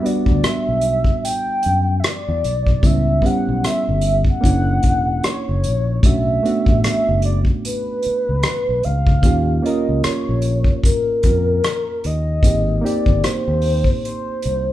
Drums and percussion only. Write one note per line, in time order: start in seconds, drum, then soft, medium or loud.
0.06 closed hi-hat medium
0.26 kick medium
0.44 cross-stick loud
0.44 closed hi-hat medium
0.81 closed hi-hat medium
1.04 kick medium
1.25 closed hi-hat loud
1.63 closed hi-hat medium
2.04 cross-stick loud
2.04 closed hi-hat medium
2.44 closed hi-hat medium
2.67 kick medium
2.83 kick loud
2.83 closed hi-hat medium
3.22 kick medium
3.22 closed hi-hat medium
3.64 cross-stick medium
3.64 closed hi-hat medium
4.01 closed hi-hat medium
4.24 kick medium
4.44 kick medium
4.44 closed hi-hat medium
4.83 kick medium
4.83 closed hi-hat medium
5.24 cross-stick medium
5.24 closed hi-hat medium
5.64 closed hi-hat medium
6.03 kick loud
6.03 closed hi-hat medium
6.45 closed hi-hat medium
6.66 kick medium
6.84 cross-stick medium
6.84 closed hi-hat medium
7.22 closed hi-hat medium
7.45 kick medium
7.65 closed hi-hat medium
8.02 closed hi-hat medium
8.43 cross-stick loud
8.43 closed hi-hat medium
8.83 closed hi-hat medium
9.07 kick medium
9.23 kick loud
9.23 closed hi-hat medium
9.66 closed hi-hat medium
10.04 cross-stick loud
10.04 closed hi-hat medium
10.42 closed hi-hat medium
10.64 kick medium
10.84 kick medium
10.84 closed hi-hat medium
11.23 kick medium
11.23 closed hi-hat medium
11.64 cross-stick loud
11.64 closed hi-hat medium
12.04 closed hi-hat medium
12.43 kick loud
12.43 closed hi-hat medium
12.86 closed hi-hat medium
13.06 kick medium
13.24 cross-stick loud
13.24 closed hi-hat medium
13.62 open hi-hat medium
13.84 kick medium
14.05 closed hi-hat medium
14.42 closed hi-hat medium